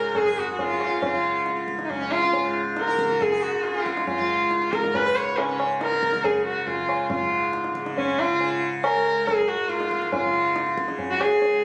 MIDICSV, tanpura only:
0, 0, Header, 1, 2, 480
1, 0, Start_track
1, 0, Tempo, 433526
1, 1132, Time_signature, 7, 2, 24, 8
1, 12892, End_track
2, 0, Start_track
2, 0, Title_t, "Tanpura"
2, 0, Program_c, 0, 104
2, 0, Note_on_c, 0, 37, 60
2, 0, Note_on_c, 0, 44, 59
2, 0, Note_on_c, 0, 49, 55
2, 532, Note_off_c, 0, 49, 0
2, 532, Note_on_c, 0, 49, 55
2, 1209, Note_off_c, 0, 49, 0
2, 1209, Note_on_c, 0, 49, 52
2, 1888, Note_off_c, 0, 37, 0
2, 1892, Note_on_c, 0, 37, 61
2, 2580, Note_off_c, 0, 44, 0
2, 2584, Note_on_c, 0, 44, 64
2, 3265, Note_off_c, 0, 49, 0
2, 3265, Note_on_c, 0, 49, 57
2, 3941, Note_off_c, 0, 49, 0
2, 3941, Note_on_c, 0, 49, 48
2, 4620, Note_off_c, 0, 37, 0
2, 4624, Note_on_c, 0, 37, 51
2, 5300, Note_off_c, 0, 44, 0
2, 5304, Note_on_c, 0, 44, 55
2, 5984, Note_off_c, 0, 49, 0
2, 5984, Note_on_c, 0, 49, 51
2, 6673, Note_off_c, 0, 49, 0
2, 6673, Note_on_c, 0, 49, 56
2, 7334, Note_off_c, 0, 37, 0
2, 7338, Note_on_c, 0, 37, 44
2, 7864, Note_off_c, 0, 44, 0
2, 7868, Note_on_c, 0, 44, 47
2, 8552, Note_off_c, 0, 49, 0
2, 8552, Note_on_c, 0, 49, 52
2, 9224, Note_off_c, 0, 49, 0
2, 9224, Note_on_c, 0, 49, 61
2, 9900, Note_off_c, 0, 37, 0
2, 9904, Note_on_c, 0, 37, 58
2, 10576, Note_off_c, 0, 44, 0
2, 10581, Note_on_c, 0, 44, 59
2, 11252, Note_off_c, 0, 49, 0
2, 11252, Note_on_c, 0, 49, 58
2, 11929, Note_off_c, 0, 49, 0
2, 11929, Note_on_c, 0, 49, 59
2, 12599, Note_off_c, 0, 37, 0
2, 12604, Note_on_c, 0, 37, 61
2, 12892, Note_off_c, 0, 37, 0
2, 12892, Note_off_c, 0, 44, 0
2, 12892, Note_off_c, 0, 49, 0
2, 12892, End_track
0, 0, End_of_file